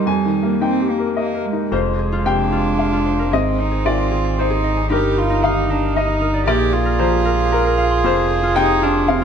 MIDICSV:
0, 0, Header, 1, 6, 480
1, 0, Start_track
1, 0, Tempo, 552486
1, 53, Time_signature, 3, 2, 24, 8
1, 1493, Tempo, 533808
1, 3413, Tempo, 523104
1, 8356, End_track
2, 0, Start_track
2, 0, Title_t, "Harp"
2, 0, Program_c, 0, 46
2, 1493, Note_on_c, 0, 65, 47
2, 1734, Note_on_c, 0, 68, 36
2, 1846, Note_off_c, 0, 65, 0
2, 1857, Note_on_c, 0, 65, 54
2, 1976, Note_on_c, 0, 77, 36
2, 2204, Note_off_c, 0, 65, 0
2, 2215, Note_on_c, 0, 65, 53
2, 2566, Note_off_c, 0, 65, 0
2, 2577, Note_on_c, 0, 65, 47
2, 2694, Note_on_c, 0, 72, 37
2, 2817, Note_on_c, 0, 70, 35
2, 2916, Note_off_c, 0, 68, 0
2, 2927, Note_on_c, 0, 68, 46
2, 2955, Note_off_c, 0, 65, 0
2, 3156, Note_off_c, 0, 72, 0
2, 3167, Note_on_c, 0, 72, 38
2, 3276, Note_off_c, 0, 68, 0
2, 3287, Note_on_c, 0, 68, 51
2, 3409, Note_on_c, 0, 80, 38
2, 3638, Note_off_c, 0, 68, 0
2, 3649, Note_on_c, 0, 68, 49
2, 3760, Note_off_c, 0, 80, 0
2, 3771, Note_on_c, 0, 80, 36
2, 3998, Note_off_c, 0, 68, 0
2, 4009, Note_on_c, 0, 68, 55
2, 4133, Note_on_c, 0, 75, 38
2, 4239, Note_off_c, 0, 80, 0
2, 4250, Note_on_c, 0, 80, 40
2, 4370, Note_on_c, 0, 63, 51
2, 4392, Note_off_c, 0, 68, 0
2, 4392, Note_off_c, 0, 72, 0
2, 4393, Note_off_c, 0, 80, 0
2, 4617, Note_on_c, 0, 67, 41
2, 4729, Note_off_c, 0, 63, 0
2, 4740, Note_on_c, 0, 63, 55
2, 4862, Note_on_c, 0, 86, 44
2, 5093, Note_off_c, 0, 63, 0
2, 5104, Note_on_c, 0, 63, 53
2, 5445, Note_off_c, 0, 63, 0
2, 5456, Note_on_c, 0, 63, 55
2, 5526, Note_off_c, 0, 77, 0
2, 5562, Note_off_c, 0, 70, 0
2, 5573, Note_on_c, 0, 70, 41
2, 5691, Note_on_c, 0, 74, 45
2, 5798, Note_off_c, 0, 70, 0
2, 5810, Note_on_c, 0, 70, 56
2, 5830, Note_off_c, 0, 63, 0
2, 5830, Note_off_c, 0, 67, 0
2, 5831, Note_off_c, 0, 75, 0
2, 6036, Note_off_c, 0, 74, 0
2, 6047, Note_on_c, 0, 74, 47
2, 6155, Note_off_c, 0, 70, 0
2, 6166, Note_on_c, 0, 70, 60
2, 6289, Note_on_c, 0, 82, 49
2, 6518, Note_off_c, 0, 70, 0
2, 6529, Note_on_c, 0, 70, 62
2, 6878, Note_off_c, 0, 70, 0
2, 6889, Note_on_c, 0, 70, 62
2, 7010, Note_on_c, 0, 77, 50
2, 7133, Note_on_c, 0, 84, 46
2, 7254, Note_on_c, 0, 65, 65
2, 7270, Note_off_c, 0, 74, 0
2, 7271, Note_off_c, 0, 70, 0
2, 7271, Note_off_c, 0, 86, 0
2, 7497, Note_on_c, 0, 68, 53
2, 7602, Note_off_c, 0, 65, 0
2, 7613, Note_on_c, 0, 65, 70
2, 7959, Note_off_c, 0, 65, 0
2, 7970, Note_on_c, 0, 65, 75
2, 8321, Note_off_c, 0, 65, 0
2, 8356, Note_off_c, 0, 68, 0
2, 8356, Note_off_c, 0, 77, 0
2, 8356, Note_off_c, 0, 82, 0
2, 8356, Note_off_c, 0, 84, 0
2, 8356, End_track
3, 0, Start_track
3, 0, Title_t, "Upright piano"
3, 0, Program_c, 1, 0
3, 0, Control_c, 1, 64, 127
3, 0, Note_on_c, 1, 63, 31
3, 49, Note_on_c, 1, 41, 33
3, 60, Note_on_c, 1, 80, 57
3, 70, Control_c, 1, 64, 0
3, 149, Note_off_c, 1, 63, 0
3, 209, Control_c, 1, 64, 127
3, 218, Note_on_c, 1, 51, 25
3, 372, Note_on_c, 1, 58, 29
3, 474, Note_off_c, 1, 51, 0
3, 505, Note_off_c, 1, 80, 0
3, 532, Note_on_c, 1, 63, 28
3, 536, Note_on_c, 1, 79, 39
3, 631, Note_off_c, 1, 58, 0
3, 695, Note_on_c, 1, 67, 27
3, 790, Note_off_c, 1, 63, 0
3, 854, Note_on_c, 1, 70, 29
3, 950, Note_off_c, 1, 67, 0
3, 1013, Note_on_c, 1, 75, 32
3, 1109, Note_off_c, 1, 70, 0
3, 1169, Note_on_c, 1, 70, 29
3, 1219, Note_off_c, 1, 79, 0
3, 1270, Note_off_c, 1, 75, 0
3, 1326, Note_on_c, 1, 63, 26
3, 1428, Note_off_c, 1, 70, 0
3, 1456, Note_off_c, 1, 41, 0
3, 1489, Note_off_c, 1, 63, 0
3, 1489, Note_on_c, 1, 41, 40
3, 1495, Note_on_c, 1, 72, 54
3, 1509, Control_c, 1, 64, 0
3, 1666, Control_c, 1, 64, 127
3, 1944, Note_off_c, 1, 72, 0
3, 1970, Note_on_c, 1, 48, 31
3, 1979, Note_on_c, 1, 79, 65
3, 2424, Note_off_c, 1, 79, 0
3, 2455, Note_on_c, 1, 77, 47
3, 2897, Note_off_c, 1, 41, 0
3, 2901, Note_off_c, 1, 77, 0
3, 2932, Note_off_c, 1, 48, 0
3, 2937, Note_on_c, 1, 44, 37
3, 2944, Note_on_c, 1, 75, 58
3, 2952, Control_c, 1, 64, 0
3, 3103, Control_c, 1, 64, 127
3, 3383, Note_off_c, 1, 75, 0
3, 3411, Note_on_c, 1, 51, 35
3, 3417, Note_on_c, 1, 74, 52
3, 3863, Note_off_c, 1, 74, 0
3, 3903, Note_on_c, 1, 72, 55
3, 4340, Note_off_c, 1, 44, 0
3, 4346, Note_off_c, 1, 72, 0
3, 4374, Note_on_c, 1, 43, 40
3, 4375, Note_off_c, 1, 51, 0
3, 4389, Note_on_c, 1, 70, 57
3, 4393, Control_c, 1, 64, 0
3, 4534, Control_c, 1, 64, 127
3, 4836, Note_off_c, 1, 70, 0
3, 4865, Note_on_c, 1, 51, 37
3, 4866, Note_on_c, 1, 77, 63
3, 5308, Note_off_c, 1, 77, 0
3, 5351, Note_on_c, 1, 75, 53
3, 5775, Note_off_c, 1, 43, 0
3, 5785, Note_off_c, 1, 75, 0
3, 5814, Note_off_c, 1, 51, 0
3, 5814, Note_on_c, 1, 46, 44
3, 5818, Note_on_c, 1, 74, 65
3, 5830, Control_c, 1, 64, 0
3, 5990, Control_c, 1, 64, 127
3, 6261, Note_off_c, 1, 74, 0
3, 6295, Note_on_c, 1, 72, 65
3, 6297, Note_on_c, 1, 53, 38
3, 6739, Note_off_c, 1, 72, 0
3, 6780, Note_on_c, 1, 70, 68
3, 7217, Note_off_c, 1, 46, 0
3, 7224, Note_off_c, 1, 70, 0
3, 7252, Note_on_c, 1, 41, 54
3, 7255, Note_off_c, 1, 53, 0
3, 7271, Control_c, 1, 64, 0
3, 7271, Note_on_c, 1, 72, 73
3, 7399, Control_c, 1, 64, 127
3, 7709, Note_off_c, 1, 72, 0
3, 7729, Note_on_c, 1, 79, 87
3, 7734, Note_on_c, 1, 48, 44
3, 8178, Note_off_c, 1, 79, 0
3, 8210, Note_on_c, 1, 77, 67
3, 8356, Note_off_c, 1, 41, 0
3, 8356, Note_off_c, 1, 48, 0
3, 8356, Note_off_c, 1, 77, 0
3, 8356, End_track
4, 0, Start_track
4, 0, Title_t, "Cello"
4, 0, Program_c, 2, 42
4, 0, Note_on_c, 2, 55, 52
4, 519, Note_off_c, 2, 55, 0
4, 543, Note_on_c, 2, 60, 48
4, 781, Note_on_c, 2, 58, 38
4, 794, Note_off_c, 2, 60, 0
4, 1013, Note_off_c, 2, 58, 0
4, 1018, Note_on_c, 2, 58, 40
4, 1258, Note_on_c, 2, 56, 36
4, 1271, Note_off_c, 2, 58, 0
4, 1495, Note_off_c, 2, 56, 0
4, 1980, Note_on_c, 2, 62, 58
4, 2940, Note_on_c, 2, 60, 41
4, 2953, Note_off_c, 2, 62, 0
4, 3184, Note_on_c, 2, 63, 45
4, 3197, Note_off_c, 2, 60, 0
4, 3415, Note_on_c, 2, 65, 50
4, 3429, Note_off_c, 2, 63, 0
4, 3910, Note_on_c, 2, 63, 50
4, 3924, Note_off_c, 2, 65, 0
4, 4383, Note_off_c, 2, 63, 0
4, 4392, Note_on_c, 2, 67, 47
4, 4633, Note_on_c, 2, 65, 51
4, 4647, Note_off_c, 2, 67, 0
4, 4865, Note_on_c, 2, 63, 53
4, 4879, Note_off_c, 2, 65, 0
4, 5113, Note_on_c, 2, 62, 47
4, 5127, Note_off_c, 2, 63, 0
4, 5329, Note_on_c, 2, 63, 58
4, 5343, Note_off_c, 2, 62, 0
4, 5807, Note_off_c, 2, 63, 0
4, 5812, Note_on_c, 2, 67, 65
4, 6048, Note_on_c, 2, 65, 59
4, 6062, Note_off_c, 2, 67, 0
4, 7725, Note_on_c, 2, 63, 71
4, 7738, Note_off_c, 2, 65, 0
4, 7978, Note_on_c, 2, 62, 59
4, 7992, Note_off_c, 2, 63, 0
4, 8213, Note_on_c, 2, 60, 62
4, 8227, Note_off_c, 2, 62, 0
4, 8356, Note_off_c, 2, 60, 0
4, 8356, End_track
5, 0, Start_track
5, 0, Title_t, "Viola"
5, 0, Program_c, 3, 41
5, 1493, Note_on_c, 3, 56, 45
5, 2899, Note_off_c, 3, 56, 0
5, 2933, Note_on_c, 3, 60, 47
5, 4345, Note_off_c, 3, 60, 0
5, 4373, Note_on_c, 3, 63, 46
5, 5812, Note_on_c, 3, 68, 54
5, 5826, Note_off_c, 3, 63, 0
5, 8356, Note_off_c, 3, 68, 0
5, 8356, End_track
6, 0, Start_track
6, 0, Title_t, "Sub bass"
6, 0, Program_c, 4, 38
6, 1494, Note_on_c, 4, 29, 55
6, 2936, Note_on_c, 4, 32, 61
6, 2950, Note_off_c, 4, 29, 0
6, 4381, Note_on_c, 4, 31, 52
6, 4394, Note_off_c, 4, 32, 0
6, 5815, Note_on_c, 4, 34, 61
6, 5828, Note_off_c, 4, 31, 0
6, 7252, Note_on_c, 4, 29, 63
6, 7266, Note_off_c, 4, 34, 0
6, 8356, Note_off_c, 4, 29, 0
6, 8356, End_track
0, 0, End_of_file